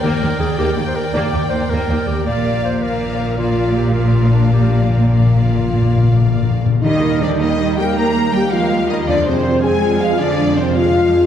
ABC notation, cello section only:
X:1
M:12/8
L:1/8
Q:3/8=107
K:Eb
V:1 name="Cello section" clef=bass
E,, E,, E,, E,, E,, z E,, E,, E,, E,, E,, E,, | B,,12- | B,,8- B,,3 z | E,2 D, E,2 G, B,2 G, F,2 E, |
D, C,2 A,2 F, D,2 C, F,3 |]